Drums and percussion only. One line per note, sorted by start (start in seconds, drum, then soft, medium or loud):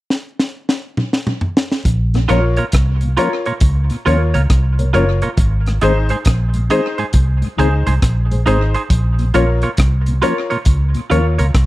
0.10 snare medium
0.39 snare medium
0.69 snare medium
0.97 mid tom medium
1.13 snare medium
1.27 mid tom medium
1.41 floor tom medium
1.57 snare loud
1.72 snare medium
1.85 kick loud
1.85 closed hi-hat medium
2.14 cross-stick medium
2.14 closed hi-hat soft
2.29 closed hi-hat medium
2.57 closed hi-hat soft
2.72 kick loud
2.72 cross-stick loud
2.72 closed hi-hat loud
3.01 closed hi-hat medium
3.17 closed hi-hat medium
3.46 closed hi-hat soft
3.60 kick loud
3.60 closed hi-hat medium
3.90 closed hi-hat medium
4.07 closed hi-hat medium
4.34 closed hi-hat medium
4.50 kick loud
4.50 cross-stick loud
4.50 closed hi-hat medium
4.79 closed hi-hat medium
4.94 closed hi-hat medium
5.22 closed hi-hat medium
5.37 kick loud
5.37 closed hi-hat medium
5.66 cross-stick medium
5.66 closed hi-hat soft
5.81 closed hi-hat medium
6.09 closed hi-hat soft
6.25 kick loud
6.25 cross-stick loud
6.25 closed hi-hat medium
6.54 closed hi-hat medium
6.70 closed hi-hat medium
6.98 closed hi-hat soft
7.13 kick medium
7.13 closed hi-hat medium
7.42 closed hi-hat soft
7.59 closed hi-hat medium
7.87 closed hi-hat medium
8.02 kick loud
8.02 cross-stick medium
8.02 closed hi-hat medium
8.31 closed hi-hat medium
8.47 closed hi-hat medium
8.74 closed hi-hat medium
8.90 kick loud
8.90 closed hi-hat medium
9.19 closed hi-hat soft
9.34 closed hi-hat medium
9.62 closed hi-hat soft
9.77 kick loud
9.77 cross-stick loud
9.77 closed hi-hat loud
10.06 closed hi-hat medium
10.22 closed hi-hat medium
10.51 closed hi-hat soft
10.65 kick loud
10.65 closed hi-hat medium
10.95 closed hi-hat soft
11.11 closed hi-hat medium
11.39 closed hi-hat medium
11.55 kick loud
11.55 cross-stick loud
11.55 closed hi-hat medium